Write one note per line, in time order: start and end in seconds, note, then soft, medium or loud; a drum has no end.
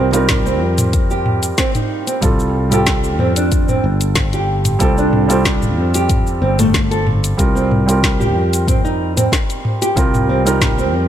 0.00 0.61 C2 loud
0.00 0.12 G3 medium
0.00 0.12 C4 medium
0.00 0.13 C4 medium
0.00 0.14 F4 medium
0.00 0.10 A#4 loud
0.12 0.30 G3 medium
0.12 0.30 C4 medium
0.12 0.45 D#4 medium
0.12 0.30 F4 medium
0.12 0.31 A#4 loud
0.12 closed hi-hat soft
0.12 shaker medium
0.29 kick loud
0.29 snare loud
0.29 closed hi-hat medium
0.29 mid tom medium
0.29 shaker medium
0.46 0.61 C4 medium
0.46 shaker soft
0.61 1.53 F2 loud
0.78 closed hi-hat soft
0.78 mid tom medium
0.78 shaker medium
0.93 kick loud
0.93 closed hi-hat medium
0.93 shaker medium
1.11 1.57 G4 medium
1.11 shaker soft
1.26 mid tom medium
1.43 closed hi-hat soft
1.43 shaker medium
1.58 1.73 C4 medium
1.58 kick loud
1.58 snare loud
1.58 closed hi-hat medium
1.58 shaker medium
1.75 2.06 D#4 medium
1.75 closed hi-hat soft
1.75 mid tom medium
1.75 shaker soft
2.07 2.22 C4 medium
2.07 closed hi-hat soft
2.07 shaker medium
2.21 3.20 C2 loud
2.21 2.67 G3 medium
2.21 2.68 C4 medium
2.21 2.68 F4 medium
2.21 2.68 A4 medium
2.21 kick loud
2.21 closed hi-hat medium
2.21 mid tom medium
2.21 shaker medium
2.40 shaker soft
2.70 4.76 G3 medium
2.70 4.77 C4 medium
2.70 4.77 F4 medium
2.70 3.18 G4 medium
2.70 closed hi-hat soft
2.70 mid tom medium
2.70 shaker medium
2.74 4.78 A4 medium
2.87 kick loud
2.87 snare loud
2.87 closed hi-hat medium
2.87 shaker medium
3.04 shaker soft
3.19 3.79 F2 loud
3.19 3.35 C4 medium
3.19 mid tom medium
3.36 3.67 D4 medium
3.36 closed hi-hat soft
3.36 shaker medium
3.52 kick loud
3.52 closed hi-hat medium
3.52 shaker medium
3.68 3.83 C4 medium
3.68 mid tom medium
3.68 shaker soft
3.84 4.75 G1 medium
4.01 closed hi-hat soft
4.01 shaker medium
4.16 kick loud
4.16 snare loud
4.16 closed hi-hat medium
4.16 mid tom medium
4.16 shaker medium
4.33 4.79 G4 medium
4.33 closed hi-hat soft
4.33 shaker soft
4.65 closed hi-hat soft
4.65 mid tom medium
4.65 shaker medium
4.79 5.77 C2 loud
4.79 5.25 G3 medium
4.79 5.25 C4 medium
4.79 4.96 C4 medium
4.79 5.26 F4 medium
4.79 5.26 A4 loud
4.79 kick loud
4.79 closed hi-hat medium
4.79 shaker medium
4.98 5.29 D4 medium
4.98 shaker soft
5.13 mid tom medium
5.28 5.46 G3 medium
5.28 5.46 C4 medium
5.28 5.45 C4 medium
5.28 5.46 F4 medium
5.28 5.47 A4 medium
5.28 closed hi-hat soft
5.28 shaker medium
5.45 kick loud
5.45 snare loud
5.45 closed hi-hat medium
5.45 shaker medium
5.62 mid tom medium
5.62 shaker soft
5.77 6.41 F2 medium
5.94 6.41 G4 medium
5.94 closed hi-hat soft
5.94 shaker medium
6.09 kick loud
6.09 closed hi-hat medium
6.09 mid tom medium
6.09 shaker medium
6.27 shaker soft
6.42 7.33 G1 medium
6.42 6.57 C4 medium
6.59 6.74 A3 loud
6.59 closed hi-hat soft
6.59 mid tom medium
6.59 shaker medium
6.74 kick loud
6.74 snare loud
6.74 closed hi-hat medium
6.74 shaker medium
6.91 7.06 A4 medium
6.91 closed hi-hat soft
6.91 shaker soft
7.07 mid tom medium
7.24 closed hi-hat soft
7.24 shaker medium
7.37 8.35 C2 loud
7.37 7.83 G3 medium
7.37 7.84 C4 medium
7.37 7.84 F4 medium
7.37 7.84 A#4 medium
7.37 kick loud
7.37 closed hi-hat medium
7.37 shaker medium
7.55 7.70 C4 medium
7.55 shaker soft
7.71 mid tom medium
7.86 9.92 G3 medium
7.86 9.93 C4 medium
7.86 9.93 F4 medium
7.86 closed hi-hat soft
7.86 shaker medium
7.90 9.94 A#4 medium
8.03 kick loud
8.03 snare loud
8.03 closed hi-hat medium
8.03 shaker medium
8.20 8.66 G4 medium
8.20 mid tom medium
8.20 shaker soft
8.35 9.27 F2 loud
8.53 closed hi-hat soft
8.53 shaker medium
8.68 8.83 C4 medium
8.68 kick loud
8.68 closed hi-hat medium
8.68 mid tom medium
8.68 shaker medium
8.85 9.15 D#4 medium
8.85 shaker soft
9.17 9.31 C4 medium
9.17 closed hi-hat soft
9.17 mid tom medium
9.17 shaker medium
9.32 kick loud
9.32 snare loud
9.32 closed hi-hat medium
9.32 shaker medium
9.50 closed hi-hat soft
9.50 shaker soft
9.65 mid tom medium
9.82 10.28 G4 medium
9.82 closed hi-hat soft
9.82 shaker medium
9.96 10.93 C2 loud
9.96 10.42 G3 medium
9.96 10.42 C4 medium
9.96 10.42 F4 medium
9.96 10.42 A#4 medium
9.96 kick loud
9.96 closed hi-hat medium
9.96 shaker medium
10.14 mid tom medium
10.14 shaker soft
10.29 10.45 C4 medium
10.45 10.62 G3 medium
10.45 10.62 C4 medium
10.45 10.77 D#4 medium
10.45 10.63 F4 medium
10.45 10.63 A#4 loud
10.45 closed hi-hat soft
10.45 shaker medium
10.61 kick loud
10.61 snare loud
10.61 closed hi-hat medium
10.61 mid tom medium
10.61 shaker medium
10.79 10.93 C4 medium
10.79 shaker soft
10.93 11.08 F2 medium